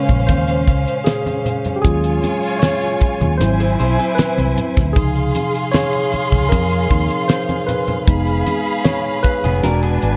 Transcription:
Already playing: tine electric piano C#3 G#3 C#4 A#4 C#5, violin section C#4 C5 F5
0.09 fingered electric bass A#1, kick, closed hi-hat, low conga
0.27 fingered electric bass D#2, tine electric piano C5, kick, closed hi-hat, muted conga, high conga
0.48 closed hi-hat
0.68 fingered electric bass C#2, kick, closed hi-hat, muted conga
0.88 closed hi-hat
1.04 tine electric piano G#4, snare, closed hi-hat, muted conga
1.26 closed hi-hat, high conga
1.45 closed hi-hat, low conga
1.65 closed hi-hat, low conga
1.76 tine electric piano G4
1.82 fingered electric bass D#2, tine electric piano F#3 G#3 C#4 F4 G#4, violin section F4 C#5 G#5, kick, closed hi-hat
2.04 closed hi-hat
2.24 closed hi-hat, high conga
2.43 closed hi-hat
2.59 tine electric piano C#5, snare, closed hi-hat, muted conga, high conga
2.81 closed hi-hat
3.01 muted fingered electric bass stroke, kick, closed hi-hat, muted conga
3.21 fingered electric bass D#2, closed hi-hat, low conga
3.38 fingered electric bass G#1, tine electric piano F#3 C4 E4 C5, violin section E4 C5 G#5, snare, closed hi-hat, high conga
3.60 clean electric guitar C4 G#4, closed hi-hat
3.80 fingered electric bass B1, clean electric guitar E4 C5, closed hi-hat
3.99 clean electric guitar C4 G#4, closed hi-hat
4.15 tine electric piano B4, closed hi-hat, muted conga
4.19 muted fingered electric bass stroke, snare
4.38 fingered electric bass C2, closed hi-hat, high conga
4.57 closed hi-hat, low conga
4.77 fingered electric bass D2, kick, snare, closed hi-hat, low conga
4.93 fingered electric bass C#2, tine electric piano C3 F3 D#4 G#4, violin section G#4 F5 C6, kick, closed hi-hat
5.16 closed hi-hat
5.35 closed hi-hat, high conga
5.55 closed hi-hat
5.72 tine electric piano C#5, snare, closed hi-hat, high conga
5.93 closed hi-hat
6.12 muted fingered electric bass stroke, closed hi-hat, muted conga
6.32 fingered electric bass C#2, kick, closed hi-hat, low conga
6.49 fingered electric bass F2, tine electric piano A#4, kick, closed hi-hat, muted conga, high conga
6.71 closed hi-hat
6.91 fingered electric bass D#2, tine electric piano F3 C4 D#4, kick, closed hi-hat, muted conga
7.10 closed hi-hat
7.28 tine electric piano C5, snare, closed hi-hat
7.49 closed hi-hat, high conga
7.67 tine electric piano B4, closed hi-hat, low conga
7.88 closed hi-hat, low conga
8.07 fingered electric bass F1, tine electric piano G#3 B3 D#4, violin section G#4 F5 B5, kick, closed hi-hat
8.27 closed hi-hat
8.46 closed hi-hat, muted conga, high conga
8.66 closed hi-hat
8.84 tine electric piano C#5, snare, closed hi-hat, muted conga, high conga
9.04 closed hi-hat
9.23 tine electric piano B4, muted fingered electric bass stroke, kick, closed hi-hat
9.44 fingered electric bass F1, clean electric guitar B3 G#4, closed hi-hat, low conga
9.63 fingered electric bass E1, tine electric piano G#3 D4 F#4, clean electric guitar D4 A#4, violin section D4 B4 G#5, snare, closed hi-hat, high conga
9.83 clean electric guitar B3 G#4, closed hi-hat
10.02 fingered electric bass G#1, closed hi-hat, muted conga

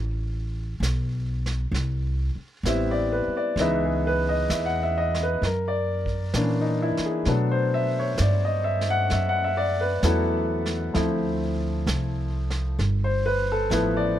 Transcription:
Already playing: upright bass A1
0.80 upright bass B1, snare, hi-hat pedal
1.46 snare
1.72 upright bass C2, brush sweep, snare
2.35 muted upright bass stroke
2.63 upright bass A1, upright piano G3 B3 C4 E4, snare, hi-hat pedal
2.69 upright piano E5
2.91 upright piano D5
3.12 upright piano B4
3.27 muted upright bass stroke
3.37 upright piano D5
3.56 upright bass C#2, upright piano E3, brush sweep, snare
3.60 upright piano G#3 B3 D#4 E5
3.85 upright piano G#4
4.07 upright piano B4
4.29 upright piano D#5
4.50 upright bass E2, upright piano E5, snare, hi-hat pedal
4.66 upright piano F#5
4.83 upright piano E5
4.98 upright piano D#5
5.15 snare
5.23 upright piano B4
5.42 upright bass F#2, upright piano A#4, brush sweep, snare
5.68 upright piano D5
6.06 kick
6.34 upright bass A#2, upright piano E3 A#3 C#4 D4, snare, hi-hat pedal
6.61 upright piano D#4
6.82 upright piano E4
6.97 muted upright bass stroke, snare
7.06 upright piano G#4
7.25 upright bass B2, upright piano F#3 A3 B3 D4, brush sweep, snare
7.29 upright piano A4
7.51 upright piano C5
7.74 upright piano E5
7.99 upright piano C#5
8.18 upright bass G2, upright piano D5, snare, hi-hat pedal
8.45 upright piano D#5
8.64 upright piano E5
8.81 snare
8.90 upright piano F#5
9.10 upright bass F#2, upright piano E5, brush sweep, snare
9.29 upright piano F#5
9.44 upright piano E5
9.57 upright piano D5
9.81 upright piano B4
10.03 upright bass E2, upright piano F#3 A3 B3 E4 A4, snare, hi-hat pedal
10.66 snare
10.94 upright bass D2, upright piano F3 A3 C4 E4, brush sweep, snare
11.86 upright bass C2, snare, hi-hat pedal
12.50 snare
12.79 upright bass G1, brush sweep, snare
13.04 upright piano C5
13.26 upright piano B4
13.52 upright piano A4
13.70 upright bass A1, upright piano F3 A3 B3 E4 B4, snare, hi-hat pedal
13.97 upright piano D5

